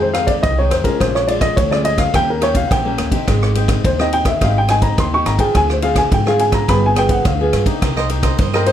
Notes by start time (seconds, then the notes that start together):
Already playing: F2 D#3 G#3 C4
0.02 C5
0.13 D#3 G#3 C4 F5, cross-stick, ride
0.27 D5, kick, ride
0.43 C2 C3 D#5, kick, cross-stick, ride
0.58 D#3 G#3 C4 C#5
0.71 F2 C5, cross-stick, ride
0.84 G#3 C#4 F4 A#4, kick, ride
1.00 A#1 A#2 C5, kick, cross-stick, ride
1.15 C#5, cross-stick
1.27 G#3 C#4 F4 D5, ride
1.41 D#5, kick, cross-stick, ride
1.56 D2 F2 C#5, kick, ride
1.71 G#3 C#4 F4 D5, cross-stick
1.85 D#5, ride
1.98 F5, kick, cross-stick, ride
2.14 D#2 D#3 A#3 C#4 G4 G5, kick, cross-stick, ride
2.30 A#4
2.41 A#3 C#4 G4 C#5, cross-stick, ride
2.55 F5, kick, ride
2.68 A#1 A#2 F#5, kick, cross-stick, ride
2.72 G5
2.85 A#3 C#4 G4
2.98 D#2, cross-stick, ride
3.11 C4 D#4 G4, kick, ride
3.28 G#1 G#3, kick, cross-stick, ride
3.43 cross-stick
3.55 C4 D#4 G4, ride
3.68 kick, cross-stick, ride
3.84 D#2 D#3 C5, kick, ride
3.99 C4 D#4 G4 D#5, cross-stick
4.12 G5, ride
4.25 E5, kick, cross-stick, ride
4.41 G#1 G#3 C4 D#4 G4 F5, kick, cross-stick, ride
4.58 G5
4.68 C4 D#4 G4 G#5, cross-stick, ride
4.82 A#5, kick, ride
4.98 D#2 D#3 C6, kick, cross-stick, ride
5.13 C4 D#4 G4 C#6
5.26 G#1 A#5, cross-stick, ride
5.39 C4 F4 G#4 G5, kick, ride
5.55 D2 D3 G#5, kick, cross-stick, ride
5.70 C5, cross-stick
5.82 C4 F4 G#4 F5, ride
5.96 G#5, kick, cross-stick, ride
6.11 G#2 D3 G5, kick, ride
6.26 C4 F4 G#4 F5, cross-stick
6.39 G#5, ride
6.52 A#5, kick, cross-stick, ride
6.68 G1 G3 B3 F4 G#4 B5, kick, cross-stick, ride
6.86 G#5
6.95 B3 F4 G#4 G5, cross-stick, ride
7.09 F#5, kick, ride
7.24 D2 D3 F5, kick, cross-stick, ride
7.40 B3 F4 G#4
7.53 G2, cross-stick, ride
7.66 A#3 D#4 G4, kick, ride
7.82 C2 C3 D#4 A#4 C5 D#5, kick, cross-stick, ride
7.97 A#4 C5 D#5, cross-stick
8.09 A#3 D#4 G4, muted cavaquinho stroke, ride
8.23 A#4 C5 D#5, kick, cross-stick, ride
8.38 G2 G3 D#4 A#4 C5 D#5, kick, ride
8.53 A#3 D#4 G4 A#4 C5 D#5, cross-stick
8.66 D#4 A#4 C5 D#5, ride